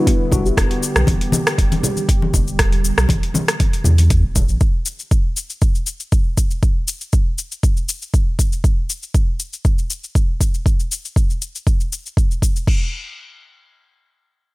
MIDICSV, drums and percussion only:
0, 0, Header, 1, 2, 480
1, 0, Start_track
1, 0, Tempo, 504202
1, 545, Time_signature, 4, 2, 24, 8
1, 13848, End_track
2, 0, Start_track
2, 0, Title_t, "Drums"
2, 67, Note_on_c, 9, 36, 117
2, 69, Note_on_c, 9, 42, 68
2, 70, Note_on_c, 9, 82, 52
2, 162, Note_off_c, 9, 36, 0
2, 164, Note_off_c, 9, 42, 0
2, 165, Note_off_c, 9, 82, 0
2, 300, Note_on_c, 9, 64, 99
2, 307, Note_on_c, 9, 36, 84
2, 310, Note_on_c, 9, 82, 99
2, 395, Note_off_c, 9, 64, 0
2, 402, Note_off_c, 9, 36, 0
2, 405, Note_off_c, 9, 82, 0
2, 436, Note_on_c, 9, 82, 40
2, 532, Note_off_c, 9, 82, 0
2, 546, Note_on_c, 9, 36, 125
2, 549, Note_on_c, 9, 37, 92
2, 549, Note_on_c, 9, 42, 63
2, 550, Note_on_c, 9, 82, 53
2, 641, Note_off_c, 9, 36, 0
2, 644, Note_off_c, 9, 37, 0
2, 644, Note_off_c, 9, 42, 0
2, 645, Note_off_c, 9, 82, 0
2, 674, Note_on_c, 9, 42, 29
2, 770, Note_off_c, 9, 42, 0
2, 789, Note_on_c, 9, 82, 100
2, 884, Note_off_c, 9, 82, 0
2, 913, Note_on_c, 9, 37, 91
2, 914, Note_on_c, 9, 82, 41
2, 1008, Note_off_c, 9, 37, 0
2, 1009, Note_off_c, 9, 82, 0
2, 1020, Note_on_c, 9, 63, 108
2, 1024, Note_on_c, 9, 64, 86
2, 1027, Note_on_c, 9, 36, 121
2, 1028, Note_on_c, 9, 42, 65
2, 1029, Note_on_c, 9, 82, 53
2, 1115, Note_off_c, 9, 63, 0
2, 1119, Note_off_c, 9, 64, 0
2, 1122, Note_off_c, 9, 36, 0
2, 1123, Note_off_c, 9, 42, 0
2, 1124, Note_off_c, 9, 82, 0
2, 1154, Note_on_c, 9, 42, 43
2, 1249, Note_off_c, 9, 42, 0
2, 1259, Note_on_c, 9, 63, 114
2, 1259, Note_on_c, 9, 64, 99
2, 1269, Note_on_c, 9, 82, 95
2, 1354, Note_off_c, 9, 63, 0
2, 1354, Note_off_c, 9, 64, 0
2, 1365, Note_off_c, 9, 82, 0
2, 1398, Note_on_c, 9, 37, 96
2, 1398, Note_on_c, 9, 42, 44
2, 1399, Note_on_c, 9, 82, 42
2, 1493, Note_off_c, 9, 37, 0
2, 1493, Note_off_c, 9, 42, 0
2, 1495, Note_off_c, 9, 82, 0
2, 1507, Note_on_c, 9, 36, 122
2, 1510, Note_on_c, 9, 42, 63
2, 1511, Note_on_c, 9, 82, 55
2, 1602, Note_off_c, 9, 36, 0
2, 1605, Note_off_c, 9, 42, 0
2, 1606, Note_off_c, 9, 82, 0
2, 1637, Note_on_c, 9, 42, 30
2, 1637, Note_on_c, 9, 63, 110
2, 1638, Note_on_c, 9, 82, 38
2, 1732, Note_off_c, 9, 42, 0
2, 1732, Note_off_c, 9, 63, 0
2, 1733, Note_off_c, 9, 82, 0
2, 1745, Note_on_c, 9, 64, 106
2, 1752, Note_on_c, 9, 82, 96
2, 1841, Note_off_c, 9, 64, 0
2, 1847, Note_off_c, 9, 82, 0
2, 1873, Note_on_c, 9, 63, 61
2, 1875, Note_on_c, 9, 82, 41
2, 1968, Note_off_c, 9, 63, 0
2, 1971, Note_off_c, 9, 82, 0
2, 1987, Note_on_c, 9, 36, 116
2, 1989, Note_on_c, 9, 42, 65
2, 1990, Note_on_c, 9, 82, 53
2, 2082, Note_off_c, 9, 36, 0
2, 2084, Note_off_c, 9, 42, 0
2, 2086, Note_off_c, 9, 82, 0
2, 2116, Note_on_c, 9, 63, 101
2, 2211, Note_off_c, 9, 63, 0
2, 2223, Note_on_c, 9, 64, 96
2, 2226, Note_on_c, 9, 36, 87
2, 2228, Note_on_c, 9, 82, 98
2, 2318, Note_off_c, 9, 64, 0
2, 2322, Note_off_c, 9, 36, 0
2, 2323, Note_off_c, 9, 82, 0
2, 2357, Note_on_c, 9, 82, 42
2, 2452, Note_off_c, 9, 82, 0
2, 2466, Note_on_c, 9, 37, 90
2, 2466, Note_on_c, 9, 42, 62
2, 2467, Note_on_c, 9, 36, 116
2, 2467, Note_on_c, 9, 82, 52
2, 2561, Note_off_c, 9, 37, 0
2, 2561, Note_off_c, 9, 42, 0
2, 2562, Note_off_c, 9, 36, 0
2, 2562, Note_off_c, 9, 82, 0
2, 2594, Note_on_c, 9, 42, 28
2, 2689, Note_off_c, 9, 42, 0
2, 2709, Note_on_c, 9, 82, 97
2, 2805, Note_off_c, 9, 82, 0
2, 2835, Note_on_c, 9, 37, 85
2, 2836, Note_on_c, 9, 82, 41
2, 2930, Note_off_c, 9, 37, 0
2, 2931, Note_off_c, 9, 82, 0
2, 2939, Note_on_c, 9, 63, 111
2, 2945, Note_on_c, 9, 64, 81
2, 2947, Note_on_c, 9, 36, 123
2, 2950, Note_on_c, 9, 42, 64
2, 2951, Note_on_c, 9, 82, 52
2, 3035, Note_off_c, 9, 63, 0
2, 3040, Note_off_c, 9, 64, 0
2, 3042, Note_off_c, 9, 36, 0
2, 3045, Note_off_c, 9, 42, 0
2, 3046, Note_off_c, 9, 82, 0
2, 3077, Note_on_c, 9, 42, 43
2, 3172, Note_off_c, 9, 42, 0
2, 3182, Note_on_c, 9, 64, 88
2, 3186, Note_on_c, 9, 63, 111
2, 3190, Note_on_c, 9, 82, 92
2, 3277, Note_off_c, 9, 64, 0
2, 3282, Note_off_c, 9, 63, 0
2, 3285, Note_off_c, 9, 82, 0
2, 3316, Note_on_c, 9, 37, 92
2, 3316, Note_on_c, 9, 42, 44
2, 3318, Note_on_c, 9, 82, 42
2, 3412, Note_off_c, 9, 37, 0
2, 3412, Note_off_c, 9, 42, 0
2, 3413, Note_off_c, 9, 82, 0
2, 3427, Note_on_c, 9, 42, 62
2, 3427, Note_on_c, 9, 63, 64
2, 3428, Note_on_c, 9, 36, 118
2, 3428, Note_on_c, 9, 82, 53
2, 3522, Note_off_c, 9, 42, 0
2, 3522, Note_off_c, 9, 63, 0
2, 3523, Note_off_c, 9, 36, 0
2, 3523, Note_off_c, 9, 82, 0
2, 3555, Note_on_c, 9, 42, 30
2, 3556, Note_on_c, 9, 82, 38
2, 3650, Note_off_c, 9, 42, 0
2, 3651, Note_off_c, 9, 82, 0
2, 3659, Note_on_c, 9, 64, 103
2, 3668, Note_on_c, 9, 82, 90
2, 3754, Note_off_c, 9, 64, 0
2, 3763, Note_off_c, 9, 82, 0
2, 3789, Note_on_c, 9, 63, 61
2, 3792, Note_on_c, 9, 42, 28
2, 3793, Note_on_c, 9, 82, 41
2, 3884, Note_off_c, 9, 63, 0
2, 3887, Note_off_c, 9, 42, 0
2, 3889, Note_off_c, 9, 82, 0
2, 3907, Note_on_c, 9, 42, 61
2, 3908, Note_on_c, 9, 36, 115
2, 3908, Note_on_c, 9, 82, 52
2, 4002, Note_off_c, 9, 42, 0
2, 4003, Note_off_c, 9, 36, 0
2, 4003, Note_off_c, 9, 82, 0
2, 4148, Note_on_c, 9, 36, 88
2, 4148, Note_on_c, 9, 82, 101
2, 4151, Note_on_c, 9, 64, 86
2, 4243, Note_off_c, 9, 36, 0
2, 4243, Note_off_c, 9, 82, 0
2, 4246, Note_off_c, 9, 64, 0
2, 4271, Note_on_c, 9, 82, 39
2, 4366, Note_off_c, 9, 82, 0
2, 4386, Note_on_c, 9, 82, 49
2, 4387, Note_on_c, 9, 36, 116
2, 4481, Note_off_c, 9, 82, 0
2, 4483, Note_off_c, 9, 36, 0
2, 4623, Note_on_c, 9, 82, 92
2, 4719, Note_off_c, 9, 82, 0
2, 4753, Note_on_c, 9, 82, 37
2, 4848, Note_off_c, 9, 82, 0
2, 4868, Note_on_c, 9, 36, 115
2, 4869, Note_on_c, 9, 82, 50
2, 4963, Note_off_c, 9, 36, 0
2, 4965, Note_off_c, 9, 82, 0
2, 5108, Note_on_c, 9, 82, 87
2, 5204, Note_off_c, 9, 82, 0
2, 5234, Note_on_c, 9, 82, 38
2, 5329, Note_off_c, 9, 82, 0
2, 5347, Note_on_c, 9, 82, 52
2, 5348, Note_on_c, 9, 36, 116
2, 5443, Note_off_c, 9, 36, 0
2, 5443, Note_off_c, 9, 82, 0
2, 5475, Note_on_c, 9, 82, 36
2, 5570, Note_off_c, 9, 82, 0
2, 5584, Note_on_c, 9, 82, 90
2, 5679, Note_off_c, 9, 82, 0
2, 5713, Note_on_c, 9, 82, 38
2, 5808, Note_off_c, 9, 82, 0
2, 5829, Note_on_c, 9, 36, 111
2, 5829, Note_on_c, 9, 82, 49
2, 5924, Note_off_c, 9, 36, 0
2, 5924, Note_off_c, 9, 82, 0
2, 6069, Note_on_c, 9, 36, 84
2, 6069, Note_on_c, 9, 82, 93
2, 6164, Note_off_c, 9, 36, 0
2, 6165, Note_off_c, 9, 82, 0
2, 6194, Note_on_c, 9, 82, 38
2, 6290, Note_off_c, 9, 82, 0
2, 6309, Note_on_c, 9, 36, 110
2, 6309, Note_on_c, 9, 82, 48
2, 6404, Note_off_c, 9, 36, 0
2, 6404, Note_off_c, 9, 82, 0
2, 6547, Note_on_c, 9, 82, 89
2, 6643, Note_off_c, 9, 82, 0
2, 6674, Note_on_c, 9, 82, 36
2, 6769, Note_off_c, 9, 82, 0
2, 6787, Note_on_c, 9, 82, 48
2, 6789, Note_on_c, 9, 36, 112
2, 6882, Note_off_c, 9, 82, 0
2, 6884, Note_off_c, 9, 36, 0
2, 7028, Note_on_c, 9, 82, 85
2, 7123, Note_off_c, 9, 82, 0
2, 7156, Note_on_c, 9, 82, 39
2, 7252, Note_off_c, 9, 82, 0
2, 7267, Note_on_c, 9, 36, 111
2, 7269, Note_on_c, 9, 82, 50
2, 7362, Note_off_c, 9, 36, 0
2, 7365, Note_off_c, 9, 82, 0
2, 7396, Note_on_c, 9, 82, 35
2, 7492, Note_off_c, 9, 82, 0
2, 7508, Note_on_c, 9, 82, 87
2, 7604, Note_off_c, 9, 82, 0
2, 7636, Note_on_c, 9, 82, 36
2, 7731, Note_off_c, 9, 82, 0
2, 7747, Note_on_c, 9, 36, 105
2, 7748, Note_on_c, 9, 82, 48
2, 7842, Note_off_c, 9, 36, 0
2, 7844, Note_off_c, 9, 82, 0
2, 7986, Note_on_c, 9, 36, 79
2, 7990, Note_on_c, 9, 82, 87
2, 8081, Note_off_c, 9, 36, 0
2, 8085, Note_off_c, 9, 82, 0
2, 8116, Note_on_c, 9, 82, 38
2, 8211, Note_off_c, 9, 82, 0
2, 8226, Note_on_c, 9, 36, 110
2, 8228, Note_on_c, 9, 82, 46
2, 8321, Note_off_c, 9, 36, 0
2, 8324, Note_off_c, 9, 82, 0
2, 8470, Note_on_c, 9, 82, 88
2, 8565, Note_off_c, 9, 82, 0
2, 8595, Note_on_c, 9, 82, 35
2, 8690, Note_off_c, 9, 82, 0
2, 8706, Note_on_c, 9, 36, 109
2, 8707, Note_on_c, 9, 82, 48
2, 8801, Note_off_c, 9, 36, 0
2, 8802, Note_off_c, 9, 82, 0
2, 8946, Note_on_c, 9, 82, 83
2, 9041, Note_off_c, 9, 82, 0
2, 9074, Note_on_c, 9, 82, 37
2, 9169, Note_off_c, 9, 82, 0
2, 9186, Note_on_c, 9, 36, 109
2, 9187, Note_on_c, 9, 82, 47
2, 9281, Note_off_c, 9, 36, 0
2, 9282, Note_off_c, 9, 82, 0
2, 9314, Note_on_c, 9, 82, 33
2, 9409, Note_off_c, 9, 82, 0
2, 9427, Note_on_c, 9, 82, 84
2, 9522, Note_off_c, 9, 82, 0
2, 9556, Note_on_c, 9, 82, 35
2, 9651, Note_off_c, 9, 82, 0
2, 9665, Note_on_c, 9, 36, 108
2, 9669, Note_on_c, 9, 82, 48
2, 9761, Note_off_c, 9, 36, 0
2, 9764, Note_off_c, 9, 82, 0
2, 9906, Note_on_c, 9, 36, 80
2, 9911, Note_on_c, 9, 82, 87
2, 10001, Note_off_c, 9, 36, 0
2, 10006, Note_off_c, 9, 82, 0
2, 10036, Note_on_c, 9, 82, 35
2, 10131, Note_off_c, 9, 82, 0
2, 10146, Note_on_c, 9, 36, 106
2, 10153, Note_on_c, 9, 82, 47
2, 10241, Note_off_c, 9, 36, 0
2, 10248, Note_off_c, 9, 82, 0
2, 10279, Note_on_c, 9, 82, 34
2, 10375, Note_off_c, 9, 82, 0
2, 10392, Note_on_c, 9, 82, 88
2, 10487, Note_off_c, 9, 82, 0
2, 10521, Note_on_c, 9, 82, 35
2, 10616, Note_off_c, 9, 82, 0
2, 10626, Note_on_c, 9, 36, 113
2, 10634, Note_on_c, 9, 82, 47
2, 10722, Note_off_c, 9, 36, 0
2, 10729, Note_off_c, 9, 82, 0
2, 10760, Note_on_c, 9, 82, 34
2, 10855, Note_off_c, 9, 82, 0
2, 10870, Note_on_c, 9, 82, 85
2, 10965, Note_off_c, 9, 82, 0
2, 10999, Note_on_c, 9, 82, 38
2, 11094, Note_off_c, 9, 82, 0
2, 11107, Note_on_c, 9, 36, 109
2, 11111, Note_on_c, 9, 82, 50
2, 11202, Note_off_c, 9, 36, 0
2, 11206, Note_off_c, 9, 82, 0
2, 11237, Note_on_c, 9, 82, 34
2, 11332, Note_off_c, 9, 82, 0
2, 11353, Note_on_c, 9, 82, 87
2, 11448, Note_off_c, 9, 82, 0
2, 11482, Note_on_c, 9, 82, 35
2, 11577, Note_off_c, 9, 82, 0
2, 11586, Note_on_c, 9, 36, 107
2, 11597, Note_on_c, 9, 82, 47
2, 11682, Note_off_c, 9, 36, 0
2, 11692, Note_off_c, 9, 82, 0
2, 11721, Note_on_c, 9, 82, 33
2, 11816, Note_off_c, 9, 82, 0
2, 11827, Note_on_c, 9, 36, 81
2, 11833, Note_on_c, 9, 82, 88
2, 11922, Note_off_c, 9, 36, 0
2, 11928, Note_off_c, 9, 82, 0
2, 11959, Note_on_c, 9, 82, 36
2, 12054, Note_off_c, 9, 82, 0
2, 12066, Note_on_c, 9, 36, 105
2, 12071, Note_on_c, 9, 49, 81
2, 12161, Note_off_c, 9, 36, 0
2, 12166, Note_off_c, 9, 49, 0
2, 13848, End_track
0, 0, End_of_file